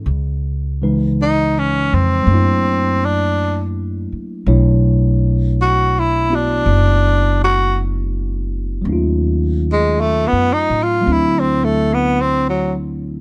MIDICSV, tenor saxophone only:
0, 0, Header, 1, 2, 480
1, 0, Start_track
1, 0, Tempo, 1100917
1, 24, Time_signature, 4, 2, 24, 8
1, 5757, End_track
2, 0, Start_track
2, 0, Title_t, "Tenor saxophone"
2, 0, Program_c, 0, 66
2, 531, Note_on_c, 0, 63, 72
2, 691, Note_on_c, 0, 61, 61
2, 698, Note_off_c, 0, 63, 0
2, 848, Note_on_c, 0, 60, 62
2, 855, Note_off_c, 0, 61, 0
2, 1331, Note_on_c, 0, 62, 71
2, 1337, Note_off_c, 0, 60, 0
2, 1588, Note_off_c, 0, 62, 0
2, 2449, Note_on_c, 0, 66, 73
2, 2614, Note_on_c, 0, 64, 64
2, 2620, Note_off_c, 0, 66, 0
2, 2768, Note_on_c, 0, 62, 75
2, 2774, Note_off_c, 0, 64, 0
2, 3233, Note_off_c, 0, 62, 0
2, 3243, Note_on_c, 0, 66, 74
2, 3399, Note_off_c, 0, 66, 0
2, 4240, Note_on_c, 0, 56, 66
2, 4362, Note_on_c, 0, 57, 65
2, 4369, Note_off_c, 0, 56, 0
2, 4479, Note_on_c, 0, 59, 72
2, 4486, Note_off_c, 0, 57, 0
2, 4591, Note_on_c, 0, 63, 76
2, 4598, Note_off_c, 0, 59, 0
2, 4722, Note_on_c, 0, 65, 71
2, 4729, Note_off_c, 0, 63, 0
2, 4850, Note_on_c, 0, 64, 65
2, 4857, Note_off_c, 0, 65, 0
2, 4968, Note_on_c, 0, 60, 59
2, 4974, Note_off_c, 0, 64, 0
2, 5075, Note_on_c, 0, 57, 63
2, 5081, Note_off_c, 0, 60, 0
2, 5205, Note_on_c, 0, 59, 67
2, 5212, Note_off_c, 0, 57, 0
2, 5323, Note_on_c, 0, 60, 80
2, 5329, Note_off_c, 0, 59, 0
2, 5445, Note_off_c, 0, 60, 0
2, 5447, Note_on_c, 0, 54, 57
2, 5555, Note_off_c, 0, 54, 0
2, 5757, End_track
0, 0, End_of_file